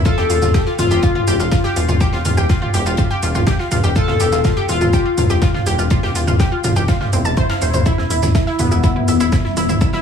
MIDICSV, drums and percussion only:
0, 0, Header, 1, 2, 480
1, 0, Start_track
1, 0, Tempo, 487805
1, 55, Time_signature, 4, 2, 24, 8
1, 9858, End_track
2, 0, Start_track
2, 0, Title_t, "Drums"
2, 49, Note_on_c, 9, 42, 80
2, 54, Note_on_c, 9, 45, 90
2, 54, Note_on_c, 9, 82, 55
2, 55, Note_on_c, 9, 36, 120
2, 148, Note_off_c, 9, 42, 0
2, 153, Note_off_c, 9, 36, 0
2, 153, Note_off_c, 9, 45, 0
2, 153, Note_off_c, 9, 82, 0
2, 174, Note_on_c, 9, 38, 47
2, 272, Note_off_c, 9, 38, 0
2, 294, Note_on_c, 9, 46, 106
2, 294, Note_on_c, 9, 82, 75
2, 299, Note_on_c, 9, 42, 68
2, 393, Note_off_c, 9, 46, 0
2, 393, Note_off_c, 9, 82, 0
2, 398, Note_off_c, 9, 42, 0
2, 414, Note_on_c, 9, 45, 91
2, 414, Note_on_c, 9, 82, 53
2, 417, Note_on_c, 9, 38, 42
2, 513, Note_off_c, 9, 45, 0
2, 513, Note_off_c, 9, 82, 0
2, 516, Note_off_c, 9, 38, 0
2, 534, Note_on_c, 9, 82, 51
2, 535, Note_on_c, 9, 36, 121
2, 535, Note_on_c, 9, 38, 127
2, 535, Note_on_c, 9, 42, 86
2, 632, Note_off_c, 9, 82, 0
2, 633, Note_off_c, 9, 36, 0
2, 633, Note_off_c, 9, 42, 0
2, 634, Note_off_c, 9, 38, 0
2, 647, Note_on_c, 9, 38, 46
2, 746, Note_off_c, 9, 38, 0
2, 774, Note_on_c, 9, 45, 91
2, 774, Note_on_c, 9, 46, 94
2, 774, Note_on_c, 9, 82, 75
2, 777, Note_on_c, 9, 42, 73
2, 873, Note_off_c, 9, 45, 0
2, 873, Note_off_c, 9, 46, 0
2, 873, Note_off_c, 9, 82, 0
2, 876, Note_off_c, 9, 42, 0
2, 895, Note_on_c, 9, 82, 54
2, 993, Note_off_c, 9, 82, 0
2, 1010, Note_on_c, 9, 42, 91
2, 1015, Note_on_c, 9, 36, 119
2, 1015, Note_on_c, 9, 82, 53
2, 1108, Note_off_c, 9, 42, 0
2, 1113, Note_off_c, 9, 36, 0
2, 1113, Note_off_c, 9, 82, 0
2, 1135, Note_on_c, 9, 45, 90
2, 1234, Note_off_c, 9, 45, 0
2, 1255, Note_on_c, 9, 42, 62
2, 1255, Note_on_c, 9, 46, 107
2, 1255, Note_on_c, 9, 82, 77
2, 1353, Note_off_c, 9, 46, 0
2, 1353, Note_off_c, 9, 82, 0
2, 1354, Note_off_c, 9, 42, 0
2, 1376, Note_on_c, 9, 82, 53
2, 1380, Note_on_c, 9, 42, 43
2, 1474, Note_off_c, 9, 82, 0
2, 1478, Note_off_c, 9, 42, 0
2, 1491, Note_on_c, 9, 38, 115
2, 1492, Note_on_c, 9, 42, 84
2, 1495, Note_on_c, 9, 36, 122
2, 1495, Note_on_c, 9, 45, 90
2, 1495, Note_on_c, 9, 82, 54
2, 1589, Note_off_c, 9, 38, 0
2, 1590, Note_off_c, 9, 42, 0
2, 1594, Note_off_c, 9, 36, 0
2, 1594, Note_off_c, 9, 45, 0
2, 1594, Note_off_c, 9, 82, 0
2, 1619, Note_on_c, 9, 38, 43
2, 1717, Note_off_c, 9, 38, 0
2, 1735, Note_on_c, 9, 46, 93
2, 1735, Note_on_c, 9, 82, 74
2, 1737, Note_on_c, 9, 42, 65
2, 1834, Note_off_c, 9, 46, 0
2, 1834, Note_off_c, 9, 82, 0
2, 1835, Note_off_c, 9, 42, 0
2, 1856, Note_on_c, 9, 45, 89
2, 1856, Note_on_c, 9, 82, 53
2, 1954, Note_off_c, 9, 45, 0
2, 1954, Note_off_c, 9, 82, 0
2, 1973, Note_on_c, 9, 42, 87
2, 1975, Note_on_c, 9, 36, 116
2, 1976, Note_on_c, 9, 82, 55
2, 2072, Note_off_c, 9, 42, 0
2, 2074, Note_off_c, 9, 36, 0
2, 2074, Note_off_c, 9, 82, 0
2, 2092, Note_on_c, 9, 38, 53
2, 2191, Note_off_c, 9, 38, 0
2, 2210, Note_on_c, 9, 42, 68
2, 2215, Note_on_c, 9, 45, 92
2, 2215, Note_on_c, 9, 46, 102
2, 2215, Note_on_c, 9, 82, 75
2, 2308, Note_off_c, 9, 42, 0
2, 2314, Note_off_c, 9, 45, 0
2, 2314, Note_off_c, 9, 46, 0
2, 2314, Note_off_c, 9, 82, 0
2, 2335, Note_on_c, 9, 82, 53
2, 2434, Note_off_c, 9, 82, 0
2, 2455, Note_on_c, 9, 36, 117
2, 2455, Note_on_c, 9, 38, 117
2, 2455, Note_on_c, 9, 82, 53
2, 2458, Note_on_c, 9, 42, 88
2, 2553, Note_off_c, 9, 82, 0
2, 2554, Note_off_c, 9, 36, 0
2, 2554, Note_off_c, 9, 38, 0
2, 2556, Note_off_c, 9, 42, 0
2, 2575, Note_on_c, 9, 45, 94
2, 2674, Note_off_c, 9, 45, 0
2, 2695, Note_on_c, 9, 46, 92
2, 2695, Note_on_c, 9, 82, 74
2, 2699, Note_on_c, 9, 42, 67
2, 2793, Note_off_c, 9, 46, 0
2, 2793, Note_off_c, 9, 82, 0
2, 2797, Note_off_c, 9, 42, 0
2, 2815, Note_on_c, 9, 42, 43
2, 2815, Note_on_c, 9, 82, 54
2, 2914, Note_off_c, 9, 42, 0
2, 2914, Note_off_c, 9, 82, 0
2, 2924, Note_on_c, 9, 42, 87
2, 2935, Note_on_c, 9, 36, 109
2, 2935, Note_on_c, 9, 45, 94
2, 2935, Note_on_c, 9, 82, 54
2, 3023, Note_off_c, 9, 42, 0
2, 3033, Note_off_c, 9, 45, 0
2, 3033, Note_off_c, 9, 82, 0
2, 3034, Note_off_c, 9, 36, 0
2, 3173, Note_on_c, 9, 42, 65
2, 3175, Note_on_c, 9, 46, 102
2, 3175, Note_on_c, 9, 82, 77
2, 3271, Note_off_c, 9, 42, 0
2, 3273, Note_off_c, 9, 46, 0
2, 3273, Note_off_c, 9, 82, 0
2, 3295, Note_on_c, 9, 45, 95
2, 3295, Note_on_c, 9, 82, 53
2, 3301, Note_on_c, 9, 42, 44
2, 3393, Note_off_c, 9, 45, 0
2, 3393, Note_off_c, 9, 82, 0
2, 3399, Note_off_c, 9, 42, 0
2, 3411, Note_on_c, 9, 38, 122
2, 3414, Note_on_c, 9, 82, 53
2, 3415, Note_on_c, 9, 36, 117
2, 3415, Note_on_c, 9, 42, 85
2, 3510, Note_off_c, 9, 38, 0
2, 3513, Note_off_c, 9, 36, 0
2, 3513, Note_off_c, 9, 82, 0
2, 3514, Note_off_c, 9, 42, 0
2, 3536, Note_on_c, 9, 38, 51
2, 3635, Note_off_c, 9, 38, 0
2, 3655, Note_on_c, 9, 42, 74
2, 3655, Note_on_c, 9, 45, 90
2, 3655, Note_on_c, 9, 46, 92
2, 3655, Note_on_c, 9, 82, 74
2, 3753, Note_off_c, 9, 45, 0
2, 3753, Note_off_c, 9, 46, 0
2, 3753, Note_off_c, 9, 82, 0
2, 3754, Note_off_c, 9, 42, 0
2, 3775, Note_on_c, 9, 82, 52
2, 3873, Note_off_c, 9, 82, 0
2, 3894, Note_on_c, 9, 82, 59
2, 3895, Note_on_c, 9, 36, 115
2, 3897, Note_on_c, 9, 42, 81
2, 3993, Note_off_c, 9, 36, 0
2, 3993, Note_off_c, 9, 82, 0
2, 3995, Note_off_c, 9, 42, 0
2, 4014, Note_on_c, 9, 38, 53
2, 4014, Note_on_c, 9, 45, 94
2, 4113, Note_off_c, 9, 38, 0
2, 4113, Note_off_c, 9, 45, 0
2, 4130, Note_on_c, 9, 42, 66
2, 4134, Note_on_c, 9, 46, 97
2, 4134, Note_on_c, 9, 82, 77
2, 4228, Note_off_c, 9, 42, 0
2, 4232, Note_off_c, 9, 46, 0
2, 4232, Note_off_c, 9, 82, 0
2, 4253, Note_on_c, 9, 38, 43
2, 4254, Note_on_c, 9, 82, 58
2, 4351, Note_off_c, 9, 38, 0
2, 4352, Note_off_c, 9, 82, 0
2, 4373, Note_on_c, 9, 45, 94
2, 4373, Note_on_c, 9, 82, 54
2, 4375, Note_on_c, 9, 36, 120
2, 4375, Note_on_c, 9, 42, 99
2, 4378, Note_on_c, 9, 38, 117
2, 4472, Note_off_c, 9, 45, 0
2, 4472, Note_off_c, 9, 82, 0
2, 4473, Note_off_c, 9, 36, 0
2, 4473, Note_off_c, 9, 42, 0
2, 4476, Note_off_c, 9, 38, 0
2, 4492, Note_on_c, 9, 38, 41
2, 4591, Note_off_c, 9, 38, 0
2, 4614, Note_on_c, 9, 46, 89
2, 4614, Note_on_c, 9, 82, 78
2, 4615, Note_on_c, 9, 42, 66
2, 4712, Note_off_c, 9, 46, 0
2, 4712, Note_off_c, 9, 82, 0
2, 4713, Note_off_c, 9, 42, 0
2, 4735, Note_on_c, 9, 45, 96
2, 4735, Note_on_c, 9, 82, 53
2, 4833, Note_off_c, 9, 45, 0
2, 4833, Note_off_c, 9, 82, 0
2, 4854, Note_on_c, 9, 82, 55
2, 4855, Note_on_c, 9, 36, 110
2, 4859, Note_on_c, 9, 42, 84
2, 4952, Note_off_c, 9, 82, 0
2, 4953, Note_off_c, 9, 36, 0
2, 4957, Note_off_c, 9, 42, 0
2, 5094, Note_on_c, 9, 45, 99
2, 5094, Note_on_c, 9, 46, 99
2, 5094, Note_on_c, 9, 82, 77
2, 5095, Note_on_c, 9, 42, 67
2, 5192, Note_off_c, 9, 45, 0
2, 5192, Note_off_c, 9, 46, 0
2, 5192, Note_off_c, 9, 82, 0
2, 5194, Note_off_c, 9, 42, 0
2, 5214, Note_on_c, 9, 82, 57
2, 5216, Note_on_c, 9, 42, 42
2, 5313, Note_off_c, 9, 82, 0
2, 5315, Note_off_c, 9, 42, 0
2, 5330, Note_on_c, 9, 38, 110
2, 5332, Note_on_c, 9, 42, 91
2, 5333, Note_on_c, 9, 82, 58
2, 5335, Note_on_c, 9, 36, 118
2, 5429, Note_off_c, 9, 38, 0
2, 5430, Note_off_c, 9, 42, 0
2, 5432, Note_off_c, 9, 82, 0
2, 5433, Note_off_c, 9, 36, 0
2, 5454, Note_on_c, 9, 45, 95
2, 5464, Note_on_c, 9, 38, 39
2, 5553, Note_off_c, 9, 45, 0
2, 5562, Note_off_c, 9, 38, 0
2, 5573, Note_on_c, 9, 46, 86
2, 5573, Note_on_c, 9, 82, 75
2, 5576, Note_on_c, 9, 42, 68
2, 5672, Note_off_c, 9, 46, 0
2, 5672, Note_off_c, 9, 82, 0
2, 5675, Note_off_c, 9, 42, 0
2, 5694, Note_on_c, 9, 82, 56
2, 5792, Note_off_c, 9, 82, 0
2, 5808, Note_on_c, 9, 42, 91
2, 5814, Note_on_c, 9, 45, 98
2, 5814, Note_on_c, 9, 82, 59
2, 5815, Note_on_c, 9, 36, 119
2, 5906, Note_off_c, 9, 42, 0
2, 5912, Note_off_c, 9, 45, 0
2, 5912, Note_off_c, 9, 82, 0
2, 5913, Note_off_c, 9, 36, 0
2, 5941, Note_on_c, 9, 38, 52
2, 6039, Note_off_c, 9, 38, 0
2, 6054, Note_on_c, 9, 46, 103
2, 6054, Note_on_c, 9, 82, 78
2, 6061, Note_on_c, 9, 42, 72
2, 6153, Note_off_c, 9, 46, 0
2, 6153, Note_off_c, 9, 82, 0
2, 6159, Note_off_c, 9, 42, 0
2, 6175, Note_on_c, 9, 45, 101
2, 6175, Note_on_c, 9, 82, 58
2, 6273, Note_off_c, 9, 45, 0
2, 6273, Note_off_c, 9, 82, 0
2, 6293, Note_on_c, 9, 42, 96
2, 6295, Note_on_c, 9, 36, 116
2, 6295, Note_on_c, 9, 82, 55
2, 6302, Note_on_c, 9, 38, 118
2, 6391, Note_off_c, 9, 42, 0
2, 6393, Note_off_c, 9, 36, 0
2, 6393, Note_off_c, 9, 82, 0
2, 6401, Note_off_c, 9, 38, 0
2, 6534, Note_on_c, 9, 45, 103
2, 6534, Note_on_c, 9, 46, 94
2, 6534, Note_on_c, 9, 82, 84
2, 6539, Note_on_c, 9, 42, 75
2, 6633, Note_off_c, 9, 45, 0
2, 6633, Note_off_c, 9, 46, 0
2, 6633, Note_off_c, 9, 82, 0
2, 6637, Note_off_c, 9, 42, 0
2, 6650, Note_on_c, 9, 42, 44
2, 6655, Note_on_c, 9, 82, 57
2, 6748, Note_off_c, 9, 42, 0
2, 6753, Note_off_c, 9, 82, 0
2, 6772, Note_on_c, 9, 38, 100
2, 6774, Note_on_c, 9, 36, 112
2, 6774, Note_on_c, 9, 82, 56
2, 6778, Note_on_c, 9, 42, 71
2, 6870, Note_off_c, 9, 38, 0
2, 6873, Note_off_c, 9, 36, 0
2, 6873, Note_off_c, 9, 82, 0
2, 6876, Note_off_c, 9, 42, 0
2, 6895, Note_on_c, 9, 45, 99
2, 6898, Note_on_c, 9, 38, 41
2, 6993, Note_off_c, 9, 45, 0
2, 6996, Note_off_c, 9, 38, 0
2, 7014, Note_on_c, 9, 42, 59
2, 7015, Note_on_c, 9, 46, 101
2, 7015, Note_on_c, 9, 82, 79
2, 7112, Note_off_c, 9, 42, 0
2, 7113, Note_off_c, 9, 46, 0
2, 7113, Note_off_c, 9, 82, 0
2, 7135, Note_on_c, 9, 82, 59
2, 7233, Note_off_c, 9, 82, 0
2, 7249, Note_on_c, 9, 42, 61
2, 7254, Note_on_c, 9, 36, 112
2, 7254, Note_on_c, 9, 45, 98
2, 7254, Note_on_c, 9, 82, 59
2, 7348, Note_off_c, 9, 42, 0
2, 7353, Note_off_c, 9, 36, 0
2, 7353, Note_off_c, 9, 45, 0
2, 7353, Note_off_c, 9, 82, 0
2, 7377, Note_on_c, 9, 38, 107
2, 7378, Note_on_c, 9, 42, 78
2, 7475, Note_off_c, 9, 38, 0
2, 7477, Note_off_c, 9, 42, 0
2, 7492, Note_on_c, 9, 38, 34
2, 7494, Note_on_c, 9, 46, 93
2, 7494, Note_on_c, 9, 82, 84
2, 7591, Note_off_c, 9, 38, 0
2, 7593, Note_off_c, 9, 46, 0
2, 7593, Note_off_c, 9, 82, 0
2, 7610, Note_on_c, 9, 42, 61
2, 7615, Note_on_c, 9, 45, 98
2, 7615, Note_on_c, 9, 82, 57
2, 7709, Note_off_c, 9, 42, 0
2, 7713, Note_off_c, 9, 45, 0
2, 7713, Note_off_c, 9, 82, 0
2, 7731, Note_on_c, 9, 42, 81
2, 7735, Note_on_c, 9, 36, 114
2, 7735, Note_on_c, 9, 45, 99
2, 7735, Note_on_c, 9, 82, 61
2, 7829, Note_off_c, 9, 42, 0
2, 7833, Note_off_c, 9, 36, 0
2, 7833, Note_off_c, 9, 45, 0
2, 7833, Note_off_c, 9, 82, 0
2, 7855, Note_on_c, 9, 38, 48
2, 7954, Note_off_c, 9, 38, 0
2, 7975, Note_on_c, 9, 46, 110
2, 7975, Note_on_c, 9, 82, 81
2, 7978, Note_on_c, 9, 42, 68
2, 8073, Note_off_c, 9, 46, 0
2, 8073, Note_off_c, 9, 82, 0
2, 8077, Note_off_c, 9, 42, 0
2, 8095, Note_on_c, 9, 45, 99
2, 8095, Note_on_c, 9, 82, 61
2, 8098, Note_on_c, 9, 38, 47
2, 8193, Note_off_c, 9, 45, 0
2, 8193, Note_off_c, 9, 82, 0
2, 8197, Note_off_c, 9, 38, 0
2, 8215, Note_on_c, 9, 36, 122
2, 8215, Note_on_c, 9, 82, 57
2, 8220, Note_on_c, 9, 42, 97
2, 8221, Note_on_c, 9, 38, 113
2, 8313, Note_off_c, 9, 36, 0
2, 8313, Note_off_c, 9, 82, 0
2, 8318, Note_off_c, 9, 42, 0
2, 8319, Note_off_c, 9, 38, 0
2, 8337, Note_on_c, 9, 38, 42
2, 8436, Note_off_c, 9, 38, 0
2, 8449, Note_on_c, 9, 42, 75
2, 8455, Note_on_c, 9, 45, 99
2, 8455, Note_on_c, 9, 46, 97
2, 8455, Note_on_c, 9, 82, 86
2, 8548, Note_off_c, 9, 42, 0
2, 8553, Note_off_c, 9, 45, 0
2, 8553, Note_off_c, 9, 46, 0
2, 8553, Note_off_c, 9, 82, 0
2, 8575, Note_on_c, 9, 82, 61
2, 8673, Note_off_c, 9, 82, 0
2, 8695, Note_on_c, 9, 36, 116
2, 8695, Note_on_c, 9, 82, 58
2, 8697, Note_on_c, 9, 42, 90
2, 8793, Note_off_c, 9, 82, 0
2, 8794, Note_off_c, 9, 36, 0
2, 8795, Note_off_c, 9, 42, 0
2, 8815, Note_on_c, 9, 45, 101
2, 8914, Note_off_c, 9, 45, 0
2, 8935, Note_on_c, 9, 46, 103
2, 8935, Note_on_c, 9, 82, 84
2, 8942, Note_on_c, 9, 42, 74
2, 9033, Note_off_c, 9, 46, 0
2, 9033, Note_off_c, 9, 82, 0
2, 9040, Note_off_c, 9, 42, 0
2, 9053, Note_on_c, 9, 42, 40
2, 9055, Note_on_c, 9, 82, 62
2, 9151, Note_off_c, 9, 42, 0
2, 9154, Note_off_c, 9, 82, 0
2, 9174, Note_on_c, 9, 38, 119
2, 9175, Note_on_c, 9, 36, 121
2, 9175, Note_on_c, 9, 45, 96
2, 9175, Note_on_c, 9, 82, 59
2, 9182, Note_on_c, 9, 42, 87
2, 9273, Note_off_c, 9, 38, 0
2, 9273, Note_off_c, 9, 45, 0
2, 9273, Note_off_c, 9, 82, 0
2, 9274, Note_off_c, 9, 36, 0
2, 9281, Note_off_c, 9, 42, 0
2, 9300, Note_on_c, 9, 38, 38
2, 9399, Note_off_c, 9, 38, 0
2, 9415, Note_on_c, 9, 46, 91
2, 9415, Note_on_c, 9, 82, 81
2, 9422, Note_on_c, 9, 42, 74
2, 9514, Note_off_c, 9, 46, 0
2, 9514, Note_off_c, 9, 82, 0
2, 9520, Note_off_c, 9, 42, 0
2, 9536, Note_on_c, 9, 45, 96
2, 9536, Note_on_c, 9, 82, 58
2, 9634, Note_off_c, 9, 45, 0
2, 9634, Note_off_c, 9, 82, 0
2, 9652, Note_on_c, 9, 42, 76
2, 9655, Note_on_c, 9, 82, 59
2, 9656, Note_on_c, 9, 36, 125
2, 9750, Note_off_c, 9, 42, 0
2, 9753, Note_off_c, 9, 82, 0
2, 9754, Note_off_c, 9, 36, 0
2, 9770, Note_on_c, 9, 38, 53
2, 9858, Note_off_c, 9, 38, 0
2, 9858, End_track
0, 0, End_of_file